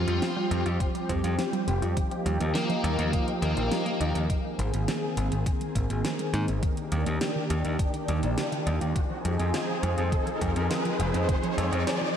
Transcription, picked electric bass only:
0.08 0.19 F2 medium
0.51 0.63 F2 medium
0.66 0.77 F2 medium
1.09 1.21 F2 medium
1.24 1.35 F2 medium
1.68 1.79 F1 medium
1.82 1.94 F2 medium
2.26 2.37 D#2 medium
2.40 2.52 D#2 medium
2.84 2.96 D#2 medium
2.99 3.10 D#2 medium
3.42 3.54 D#2 medium
3.57 3.68 A#1 medium
4.01 4.12 D#2 medium
4.15 4.27 D#2 medium
4.59 4.70 G#1 medium
4.73 4.85 G#1 medium
5.17 5.29 G#1 medium
5.32 5.43 G#1 medium
5.75 5.87 G#1 medium
5.90 6.01 G#1 medium
6.34 6.45 G#2 medium
6.48 6.60 G#1 medium
6.92 7.03 D#2 medium
7.07 7.18 D#2 medium
7.50 7.62 D#2 medium
7.65 7.76 D#2 medium
8.09 8.20 D#2 medium
8.23 8.35 A#1 medium
8.67 8.78 D#2 medium
8.81 8.93 D#2 medium
9.25 9.36 F2 medium
9.40 9.51 F2 medium
9.83 9.95 F2 medium
9.98 10.09 F2 medium
10.41 10.53 F2 medium
10.56 10.67 F2 medium
11.00 11.11 F1 medium
11.14 11.26 F2 medium
11.58 11.69 F2 medium
11.72 11.84 F2 medium

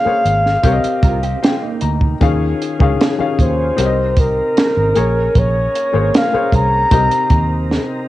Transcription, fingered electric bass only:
0.06 muted fingered electric bass stroke soft
0.25 0.56 G#1 medium
0.64 0.80 C2 loud
0.85 muted fingered electric bass stroke soft
1.03 1.34 C2 medium
1.82 2.13 D2 medium
2.22 2.52 D#2 loud
2.80 2.96 C#2 medium
3.20 muted fingered electric bass stroke soft
3.39 3.70 D#2 medium
3.78 4.40 C2 loud
4.77 4.92 G#1 medium
4.97 5.27 A#1 medium
5.35 5.66 A#1 loud
5.94 6.09 G#1 medium
6.34 muted fingered electric bass stroke soft
6.53 6.83 C2 medium
6.92 7.07 C2 loud
7.31 7.77 D#2 medium

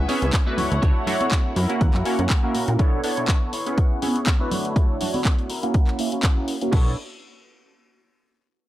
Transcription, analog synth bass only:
0.22 0.31 C#2 medium
0.58 0.69 D2 soft
0.71 0.80 D2 medium
0.82 0.93 D2 loud
1.56 1.67 F#2 medium
1.81 1.92 E2 medium
1.94 2.03 F#2 medium
2.19 2.28 F#2 medium
2.55 2.65 A#2 soft
2.68 2.77 A#2 medium
6.73 6.96 B1 loud

